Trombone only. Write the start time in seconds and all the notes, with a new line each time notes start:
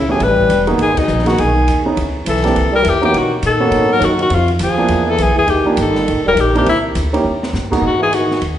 0.08 E3
0.19 G3
0.79 D#3
0.96 B2
1.26 D#3
1.39 D#3
2.26 E3
2.71 G3
2.83 E3
3.02 E3
3.15 D#3
3.45 D#3
3.91 F#3
4.02 D#3
4.18 D#3
4.31 C3
4.60 F3
5.07 E3
5.18 E3
5.36 E3
5.47 D#3
5.76 D#3
6.25 G3
6.37 D#3
6.53 D#3
6.65 C3
7.81 D#3
7.99 E3
8.12 D#3